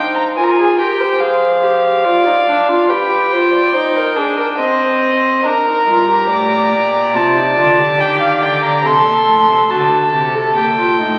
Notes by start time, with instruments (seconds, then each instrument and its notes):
Already playing: viola D#4, violin C5 G5
0.15 violin A#5
0.36 viola F4, violin A#4 G#5
0.43 violin A#5
0.50 violin G#5
0.58 violin G#4
0.78 viola G4, violin A#4 G5
0.99 violin C5
1.20 viola G#4, violin F5
1.63 viola G4
2.04 viola F4, violin D5
2.26 viola D#4
2.48 viola D4
2.68 viola F4
2.89 viola G4, violin B4 G5
3.32 viola F4, violin C5
3.53 violin D5
3.73 viola D#4, violin C5
3.96 violin A#4
4.16 viola D4, violin G#4
4.37 violin A#4
4.58 viola C4, violin C5 D#5
5.44 viola D4, violin A#4 A#5
5.67 viola D#4
5.87 cello G2, viola F4
6.08 viola G4
6.30 cello A2, violin D5
6.72 cello A#2
7.14 cello C3, viola F4, violin A5
7.36 viola D#4
7.57 cello D3, viola F4
7.79 viola G4
7.99 cello D#3, violin G5
8.21 violin F5
8.42 cello D3, violin G5
8.63 violin A#5
8.84 cello C3, violin A4 C6, viola A4
9.06 cello A#2
9.27 cello A2
9.48 cello C3
9.70 cello D3, viola F#4, violin A4 A5
10.12 cello C3, viola G4
10.34 viola A4
10.55 cello A#2, viola G4, violin G5
10.77 viola F4
10.98 cello A2, viola D#4